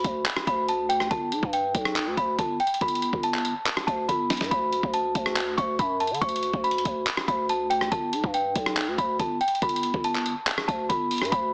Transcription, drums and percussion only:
0.04 kick medium
0.04 closed hi-hat medium
0.26 clap loud
0.26 closed hi-hat medium
0.36 cross-stick loud
0.47 kick medium
0.47 closed hi-hat medium
0.68 closed hi-hat medium
0.90 closed hi-hat medium
1.00 cross-stick medium
1.11 kick loud
1.11 closed hi-hat medium
1.32 closed hi-hat medium
1.43 kick loud
1.53 closed hi-hat medium
1.75 kick medium
1.75 closed hi-hat medium
1.85 cross-stick loud
1.96 clap loud
1.96 closed hi-hat medium
2.17 kick medium
2.17 closed hi-hat medium
2.39 kick medium
2.39 closed hi-hat medium
2.60 closed hi-hat soft
2.67 closed hi-hat medium
2.74 closed hi-hat medium
2.81 kick loud
2.81 closed hi-hat medium
2.88 closed hi-hat medium
2.95 closed hi-hat medium
3.02 closed hi-hat medium
3.13 kick loud
3.23 closed hi-hat medium
3.34 clap medium
3.45 closed hi-hat medium
3.66 clap loud
3.66 closed hi-hat medium
3.77 cross-stick loud
3.88 kick medium
3.88 closed hi-hat medium
4.09 kick medium
4.09 closed hi-hat medium
4.30 snare medium
4.30 closed hi-hat soft
4.30 open hi-hat medium
4.37 snare medium
4.37 closed hi-hat medium
4.44 closed hi-hat medium
4.51 kick loud
4.51 closed hi-hat medium
4.72 closed hi-hat medium
4.83 kick loud
4.94 closed hi-hat medium
5.15 kick medium
5.15 closed hi-hat medium
5.26 cross-stick medium
5.36 clap loud
5.36 closed hi-hat medium
5.58 kick medium
5.58 closed hi-hat medium
5.79 kick medium
5.79 closed hi-hat medium
6.00 closed hi-hat soft
6.07 closed hi-hat medium
6.14 closed hi-hat medium
6.22 kick loud
6.22 closed hi-hat medium
6.29 closed hi-hat medium
6.36 closed hi-hat medium
6.43 closed hi-hat medium
6.53 kick medium
6.64 closed hi-hat soft
6.71 closed hi-hat medium
6.78 closed hi-hat medium
6.85 kick medium
6.85 closed hi-hat medium
7.07 clap loud
7.07 closed hi-hat medium
7.17 cross-stick loud
7.28 kick medium
7.28 closed hi-hat medium
7.49 closed hi-hat medium
7.71 closed hi-hat medium
7.81 cross-stick medium
7.92 kick loud
7.92 closed hi-hat medium
8.13 closed hi-hat medium
8.24 kick loud
8.34 closed hi-hat medium
8.55 kick medium
8.55 closed hi-hat medium
8.66 cross-stick loud
8.77 clap loud
8.77 closed hi-hat medium
8.98 kick medium
8.98 closed hi-hat medium
9.19 kick medium
9.19 closed hi-hat medium
9.41 closed hi-hat soft
9.48 closed hi-hat medium
9.55 closed hi-hat medium
9.62 kick loud
9.62 closed hi-hat medium
9.69 closed hi-hat medium
9.76 closed hi-hat medium
9.83 closed hi-hat medium
9.94 kick loud
10.04 closed hi-hat medium
10.15 clap medium
10.26 closed hi-hat medium
10.47 clap loud
10.47 closed hi-hat medium
10.58 cross-stick loud
10.68 kick medium
10.68 closed hi-hat medium
10.90 kick medium
10.90 closed hi-hat medium
11.11 closed hi-hat soft
11.11 open hi-hat medium
11.18 cross-stick medium
11.18 closed hi-hat medium
11.25 closed hi-hat medium
11.32 kick loud
11.32 closed hi-hat medium

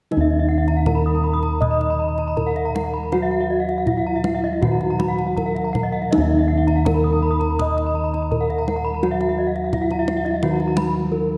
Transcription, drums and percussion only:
0.12 kendang high soft
0.68 kendang slap soft
0.86 kendang high soft
0.86 kendang low soft
1.43 kendang slap soft
1.62 kendang low soft
1.81 kendang slap soft
2.18 kendang slap soft
2.37 kendang low soft
2.56 kendang slap soft
2.76 kendang high soft
3.12 kendang high soft
3.69 kendang slap soft
3.87 kendang low soft
4.24 kendang high soft
4.63 kendang low soft
4.81 kendang slap soft
5.00 kendang high soft
5.18 kendang slap soft
5.37 kendang low soft
5.56 kendang slap soft
5.75 kendang high soft
5.75 kendang low soft
6.13 kendang high soft
6.68 kendang slap soft
6.86 kendang high soft
6.86 kendang low soft
7.41 kendang slap soft
7.59 kendang low soft
7.78 kendang slap soft
8.14 kendang slap soft
8.32 kendang low soft
8.50 kendang slap soft
8.68 kendang high soft
9.03 kendang high soft
9.21 kendang slap soft
9.56 kendang slap soft
9.73 kendang low soft
9.91 kendang slap soft
10.08 kendang high soft
10.26 kendang slap soft
10.43 kendang low soft
10.60 kendang slap soft
10.77 kendang high soft

